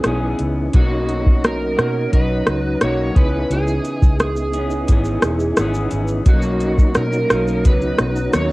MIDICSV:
0, 0, Header, 1, 6, 480
1, 0, Start_track
1, 0, Key_signature, 5, "major"
1, 0, Tempo, 689655
1, 520, Time_signature, 4, 2, 24, 8
1, 5932, End_track
2, 0, Start_track
2, 0, Title_t, "Electric slide guitar"
2, 0, Program_c, 0, 29
2, 0, Note_on_c, 0, 68, 73
2, 260, Note_off_c, 0, 68, 0
2, 527, Note_on_c, 0, 66, 90
2, 1015, Note_on_c, 0, 70, 82
2, 1018, Note_off_c, 0, 66, 0
2, 1481, Note_off_c, 0, 70, 0
2, 1484, Note_on_c, 0, 71, 97
2, 1934, Note_off_c, 0, 71, 0
2, 1964, Note_on_c, 0, 73, 88
2, 2206, Note_on_c, 0, 71, 88
2, 2209, Note_off_c, 0, 73, 0
2, 2426, Note_off_c, 0, 71, 0
2, 2456, Note_on_c, 0, 68, 92
2, 2900, Note_off_c, 0, 68, 0
2, 2932, Note_on_c, 0, 68, 73
2, 4098, Note_off_c, 0, 68, 0
2, 4376, Note_on_c, 0, 66, 78
2, 4849, Note_on_c, 0, 70, 80
2, 4862, Note_off_c, 0, 66, 0
2, 5336, Note_off_c, 0, 70, 0
2, 5338, Note_on_c, 0, 71, 95
2, 5805, Note_off_c, 0, 71, 0
2, 5808, Note_on_c, 0, 73, 89
2, 5932, Note_off_c, 0, 73, 0
2, 5932, End_track
3, 0, Start_track
3, 0, Title_t, "Tonewheel organ"
3, 0, Program_c, 1, 16
3, 0, Note_on_c, 1, 59, 60
3, 0, Note_on_c, 1, 63, 54
3, 0, Note_on_c, 1, 64, 55
3, 0, Note_on_c, 1, 68, 62
3, 480, Note_off_c, 1, 59, 0
3, 486, Note_off_c, 1, 63, 0
3, 490, Note_off_c, 1, 64, 0
3, 498, Note_off_c, 1, 68, 0
3, 498, Note_on_c, 1, 61, 59
3, 508, Note_on_c, 1, 63, 53
3, 521, Note_on_c, 1, 66, 55
3, 535, Note_on_c, 1, 82, 63
3, 2161, Note_off_c, 1, 61, 0
3, 2166, Note_off_c, 1, 63, 0
3, 2172, Note_off_c, 1, 66, 0
3, 2179, Note_off_c, 1, 82, 0
3, 2184, Note_on_c, 1, 59, 56
3, 2198, Note_on_c, 1, 63, 58
3, 2205, Note_on_c, 1, 64, 55
3, 2221, Note_on_c, 1, 68, 64
3, 4324, Note_off_c, 1, 59, 0
3, 4331, Note_off_c, 1, 63, 0
3, 4334, Note_off_c, 1, 64, 0
3, 4339, Note_on_c, 1, 61, 64
3, 4342, Note_off_c, 1, 68, 0
3, 4353, Note_on_c, 1, 63, 53
3, 4364, Note_on_c, 1, 66, 54
3, 4377, Note_on_c, 1, 82, 68
3, 5932, Note_off_c, 1, 61, 0
3, 5932, Note_off_c, 1, 63, 0
3, 5932, Note_off_c, 1, 66, 0
3, 5932, Note_off_c, 1, 82, 0
3, 5932, End_track
4, 0, Start_track
4, 0, Title_t, "Clean electric guitar"
4, 0, Program_c, 2, 27
4, 23, Note_on_c, 2, 52, 58
4, 33, Note_on_c, 2, 59, 62
4, 41, Note_on_c, 2, 61, 60
4, 50, Note_on_c, 2, 68, 64
4, 511, Note_off_c, 2, 52, 0
4, 511, Note_on_c, 2, 47, 74
4, 517, Note_on_c, 2, 54, 75
4, 519, Note_off_c, 2, 59, 0
4, 520, Note_off_c, 2, 61, 0
4, 522, Note_on_c, 2, 58, 72
4, 525, Note_off_c, 2, 68, 0
4, 526, Note_on_c, 2, 63, 85
4, 529, Note_on_c, 2, 66, 80
4, 1219, Note_off_c, 2, 66, 0
4, 1228, Note_on_c, 2, 66, 47
4, 1235, Note_off_c, 2, 47, 0
4, 1238, Note_off_c, 2, 54, 0
4, 1238, Note_off_c, 2, 63, 0
4, 1241, Note_off_c, 2, 58, 0
4, 1246, Note_on_c, 2, 63, 45
4, 1258, Note_on_c, 2, 58, 37
4, 1469, Note_on_c, 2, 54, 53
4, 1474, Note_off_c, 2, 66, 0
4, 1479, Note_off_c, 2, 63, 0
4, 1487, Note_on_c, 2, 63, 56
4, 1489, Note_off_c, 2, 58, 0
4, 1495, Note_on_c, 2, 66, 58
4, 1944, Note_off_c, 2, 54, 0
4, 1953, Note_on_c, 2, 54, 57
4, 1961, Note_on_c, 2, 58, 56
4, 1963, Note_off_c, 2, 63, 0
4, 1967, Note_off_c, 2, 66, 0
4, 1971, Note_on_c, 2, 63, 58
4, 1979, Note_on_c, 2, 66, 65
4, 2190, Note_off_c, 2, 66, 0
4, 2193, Note_on_c, 2, 68, 61
4, 2196, Note_off_c, 2, 54, 0
4, 2200, Note_off_c, 2, 58, 0
4, 2204, Note_off_c, 2, 63, 0
4, 2207, Note_on_c, 2, 61, 56
4, 2216, Note_on_c, 2, 59, 58
4, 2226, Note_on_c, 2, 52, 55
4, 2235, Note_on_c, 2, 49, 50
4, 3152, Note_off_c, 2, 68, 0
4, 3160, Note_on_c, 2, 68, 48
4, 3163, Note_off_c, 2, 61, 0
4, 3172, Note_on_c, 2, 61, 46
4, 3173, Note_off_c, 2, 52, 0
4, 3177, Note_off_c, 2, 49, 0
4, 3183, Note_off_c, 2, 59, 0
4, 3186, Note_on_c, 2, 59, 39
4, 3395, Note_on_c, 2, 52, 55
4, 3397, Note_off_c, 2, 59, 0
4, 3400, Note_off_c, 2, 68, 0
4, 3405, Note_on_c, 2, 59, 56
4, 3406, Note_off_c, 2, 61, 0
4, 3414, Note_on_c, 2, 61, 56
4, 3423, Note_on_c, 2, 68, 66
4, 3869, Note_off_c, 2, 52, 0
4, 3877, Note_on_c, 2, 52, 59
4, 3885, Note_off_c, 2, 59, 0
4, 3887, Note_off_c, 2, 61, 0
4, 3888, Note_on_c, 2, 59, 66
4, 3891, Note_off_c, 2, 68, 0
4, 3895, Note_on_c, 2, 61, 60
4, 3903, Note_on_c, 2, 68, 64
4, 4358, Note_off_c, 2, 52, 0
4, 4358, Note_on_c, 2, 47, 73
4, 4365, Note_on_c, 2, 54, 75
4, 4367, Note_off_c, 2, 61, 0
4, 4371, Note_off_c, 2, 59, 0
4, 4371, Note_off_c, 2, 68, 0
4, 4374, Note_on_c, 2, 58, 85
4, 4376, Note_on_c, 2, 63, 93
4, 5066, Note_off_c, 2, 63, 0
4, 5074, Note_on_c, 2, 63, 52
4, 5079, Note_off_c, 2, 47, 0
4, 5089, Note_off_c, 2, 58, 0
4, 5092, Note_on_c, 2, 58, 49
4, 5101, Note_off_c, 2, 54, 0
4, 5104, Note_on_c, 2, 54, 44
4, 5317, Note_off_c, 2, 63, 0
4, 5322, Note_off_c, 2, 54, 0
4, 5324, Note_on_c, 2, 47, 57
4, 5325, Note_off_c, 2, 58, 0
4, 5331, Note_on_c, 2, 54, 60
4, 5348, Note_on_c, 2, 63, 62
4, 5789, Note_off_c, 2, 47, 0
4, 5797, Note_on_c, 2, 47, 59
4, 5807, Note_off_c, 2, 54, 0
4, 5810, Note_on_c, 2, 54, 57
4, 5814, Note_off_c, 2, 63, 0
4, 5815, Note_on_c, 2, 58, 60
4, 5826, Note_on_c, 2, 63, 62
4, 5932, Note_off_c, 2, 47, 0
4, 5932, Note_off_c, 2, 54, 0
4, 5932, Note_off_c, 2, 58, 0
4, 5932, Note_off_c, 2, 63, 0
4, 5932, End_track
5, 0, Start_track
5, 0, Title_t, "Fingered electric bass"
5, 0, Program_c, 3, 33
5, 36, Note_on_c, 3, 35, 80
5, 230, Note_off_c, 3, 35, 0
5, 279, Note_on_c, 3, 37, 72
5, 471, Note_off_c, 3, 37, 0
5, 518, Note_on_c, 3, 35, 102
5, 1211, Note_off_c, 3, 35, 0
5, 1244, Note_on_c, 3, 47, 80
5, 1434, Note_off_c, 3, 47, 0
5, 1487, Note_on_c, 3, 35, 87
5, 1676, Note_off_c, 3, 35, 0
5, 1723, Note_on_c, 3, 37, 73
5, 1913, Note_off_c, 3, 37, 0
5, 1965, Note_on_c, 3, 35, 88
5, 2155, Note_off_c, 3, 35, 0
5, 2200, Note_on_c, 3, 37, 84
5, 2392, Note_off_c, 3, 37, 0
5, 2439, Note_on_c, 3, 37, 97
5, 2631, Note_off_c, 3, 37, 0
5, 2801, Note_on_c, 3, 37, 91
5, 3373, Note_off_c, 3, 37, 0
5, 3405, Note_on_c, 3, 32, 81
5, 3595, Note_off_c, 3, 32, 0
5, 3643, Note_on_c, 3, 28, 73
5, 3834, Note_off_c, 3, 28, 0
5, 3888, Note_on_c, 3, 32, 92
5, 4076, Note_off_c, 3, 32, 0
5, 4123, Note_on_c, 3, 32, 78
5, 4313, Note_off_c, 3, 32, 0
5, 4357, Note_on_c, 3, 35, 110
5, 4742, Note_off_c, 3, 35, 0
5, 4848, Note_on_c, 3, 47, 92
5, 5036, Note_off_c, 3, 47, 0
5, 5088, Note_on_c, 3, 35, 82
5, 5326, Note_off_c, 3, 35, 0
5, 5326, Note_on_c, 3, 37, 77
5, 5516, Note_off_c, 3, 37, 0
5, 5569, Note_on_c, 3, 35, 82
5, 5757, Note_off_c, 3, 35, 0
5, 5808, Note_on_c, 3, 39, 90
5, 5932, Note_off_c, 3, 39, 0
5, 5932, End_track
6, 0, Start_track
6, 0, Title_t, "Drums"
6, 26, Note_on_c, 9, 42, 72
6, 27, Note_on_c, 9, 37, 72
6, 96, Note_off_c, 9, 42, 0
6, 97, Note_off_c, 9, 37, 0
6, 270, Note_on_c, 9, 42, 46
6, 340, Note_off_c, 9, 42, 0
6, 511, Note_on_c, 9, 42, 60
6, 517, Note_on_c, 9, 36, 101
6, 580, Note_off_c, 9, 42, 0
6, 586, Note_off_c, 9, 36, 0
6, 756, Note_on_c, 9, 42, 43
6, 826, Note_off_c, 9, 42, 0
6, 880, Note_on_c, 9, 36, 82
6, 950, Note_off_c, 9, 36, 0
6, 1003, Note_on_c, 9, 42, 59
6, 1006, Note_on_c, 9, 37, 83
6, 1073, Note_off_c, 9, 42, 0
6, 1076, Note_off_c, 9, 37, 0
6, 1243, Note_on_c, 9, 37, 83
6, 1243, Note_on_c, 9, 42, 48
6, 1312, Note_off_c, 9, 37, 0
6, 1312, Note_off_c, 9, 42, 0
6, 1482, Note_on_c, 9, 42, 68
6, 1484, Note_on_c, 9, 36, 80
6, 1552, Note_off_c, 9, 42, 0
6, 1553, Note_off_c, 9, 36, 0
6, 1716, Note_on_c, 9, 42, 48
6, 1717, Note_on_c, 9, 37, 88
6, 1786, Note_off_c, 9, 37, 0
6, 1786, Note_off_c, 9, 42, 0
6, 1956, Note_on_c, 9, 42, 71
6, 1957, Note_on_c, 9, 37, 80
6, 2025, Note_off_c, 9, 42, 0
6, 2027, Note_off_c, 9, 37, 0
6, 2200, Note_on_c, 9, 36, 86
6, 2201, Note_on_c, 9, 42, 42
6, 2270, Note_off_c, 9, 36, 0
6, 2270, Note_off_c, 9, 42, 0
6, 2443, Note_on_c, 9, 42, 62
6, 2443, Note_on_c, 9, 82, 60
6, 2512, Note_off_c, 9, 42, 0
6, 2512, Note_off_c, 9, 82, 0
6, 2559, Note_on_c, 9, 82, 55
6, 2628, Note_off_c, 9, 82, 0
6, 2679, Note_on_c, 9, 42, 44
6, 2679, Note_on_c, 9, 82, 45
6, 2749, Note_off_c, 9, 42, 0
6, 2749, Note_off_c, 9, 82, 0
6, 2802, Note_on_c, 9, 36, 88
6, 2805, Note_on_c, 9, 82, 51
6, 2871, Note_off_c, 9, 36, 0
6, 2875, Note_off_c, 9, 82, 0
6, 2922, Note_on_c, 9, 42, 57
6, 2922, Note_on_c, 9, 82, 57
6, 2925, Note_on_c, 9, 37, 85
6, 2992, Note_off_c, 9, 42, 0
6, 2992, Note_off_c, 9, 82, 0
6, 2995, Note_off_c, 9, 37, 0
6, 3037, Note_on_c, 9, 82, 42
6, 3107, Note_off_c, 9, 82, 0
6, 3156, Note_on_c, 9, 42, 47
6, 3156, Note_on_c, 9, 82, 46
6, 3226, Note_off_c, 9, 42, 0
6, 3226, Note_off_c, 9, 82, 0
6, 3274, Note_on_c, 9, 82, 43
6, 3344, Note_off_c, 9, 82, 0
6, 3398, Note_on_c, 9, 42, 68
6, 3398, Note_on_c, 9, 82, 69
6, 3402, Note_on_c, 9, 36, 77
6, 3467, Note_off_c, 9, 42, 0
6, 3467, Note_off_c, 9, 82, 0
6, 3472, Note_off_c, 9, 36, 0
6, 3512, Note_on_c, 9, 82, 43
6, 3582, Note_off_c, 9, 82, 0
6, 3635, Note_on_c, 9, 37, 91
6, 3635, Note_on_c, 9, 42, 51
6, 3635, Note_on_c, 9, 82, 50
6, 3705, Note_off_c, 9, 37, 0
6, 3705, Note_off_c, 9, 42, 0
6, 3705, Note_off_c, 9, 82, 0
6, 3756, Note_on_c, 9, 82, 49
6, 3825, Note_off_c, 9, 82, 0
6, 3876, Note_on_c, 9, 42, 69
6, 3876, Note_on_c, 9, 82, 73
6, 3877, Note_on_c, 9, 37, 81
6, 3945, Note_off_c, 9, 42, 0
6, 3945, Note_off_c, 9, 82, 0
6, 3947, Note_off_c, 9, 37, 0
6, 3997, Note_on_c, 9, 82, 50
6, 4066, Note_off_c, 9, 82, 0
6, 4112, Note_on_c, 9, 42, 46
6, 4112, Note_on_c, 9, 82, 49
6, 4182, Note_off_c, 9, 42, 0
6, 4182, Note_off_c, 9, 82, 0
6, 4230, Note_on_c, 9, 82, 45
6, 4300, Note_off_c, 9, 82, 0
6, 4356, Note_on_c, 9, 42, 63
6, 4356, Note_on_c, 9, 82, 62
6, 4358, Note_on_c, 9, 36, 109
6, 4425, Note_off_c, 9, 42, 0
6, 4425, Note_off_c, 9, 82, 0
6, 4428, Note_off_c, 9, 36, 0
6, 4470, Note_on_c, 9, 82, 59
6, 4540, Note_off_c, 9, 82, 0
6, 4597, Note_on_c, 9, 42, 44
6, 4597, Note_on_c, 9, 82, 42
6, 4666, Note_off_c, 9, 42, 0
6, 4666, Note_off_c, 9, 82, 0
6, 4719, Note_on_c, 9, 36, 80
6, 4723, Note_on_c, 9, 82, 49
6, 4789, Note_off_c, 9, 36, 0
6, 4793, Note_off_c, 9, 82, 0
6, 4834, Note_on_c, 9, 42, 55
6, 4834, Note_on_c, 9, 82, 52
6, 4837, Note_on_c, 9, 37, 82
6, 4904, Note_off_c, 9, 42, 0
6, 4904, Note_off_c, 9, 82, 0
6, 4907, Note_off_c, 9, 37, 0
6, 4961, Note_on_c, 9, 82, 45
6, 5030, Note_off_c, 9, 82, 0
6, 5082, Note_on_c, 9, 37, 95
6, 5082, Note_on_c, 9, 42, 46
6, 5082, Note_on_c, 9, 82, 48
6, 5151, Note_off_c, 9, 37, 0
6, 5151, Note_off_c, 9, 42, 0
6, 5151, Note_off_c, 9, 82, 0
6, 5203, Note_on_c, 9, 82, 44
6, 5273, Note_off_c, 9, 82, 0
6, 5323, Note_on_c, 9, 42, 72
6, 5323, Note_on_c, 9, 82, 69
6, 5325, Note_on_c, 9, 36, 82
6, 5393, Note_off_c, 9, 42, 0
6, 5393, Note_off_c, 9, 82, 0
6, 5395, Note_off_c, 9, 36, 0
6, 5438, Note_on_c, 9, 82, 44
6, 5508, Note_off_c, 9, 82, 0
6, 5556, Note_on_c, 9, 37, 91
6, 5556, Note_on_c, 9, 42, 49
6, 5556, Note_on_c, 9, 82, 48
6, 5626, Note_off_c, 9, 37, 0
6, 5626, Note_off_c, 9, 42, 0
6, 5626, Note_off_c, 9, 82, 0
6, 5679, Note_on_c, 9, 82, 51
6, 5749, Note_off_c, 9, 82, 0
6, 5799, Note_on_c, 9, 42, 71
6, 5799, Note_on_c, 9, 82, 71
6, 5801, Note_on_c, 9, 37, 83
6, 5869, Note_off_c, 9, 42, 0
6, 5869, Note_off_c, 9, 82, 0
6, 5870, Note_off_c, 9, 37, 0
6, 5932, End_track
0, 0, End_of_file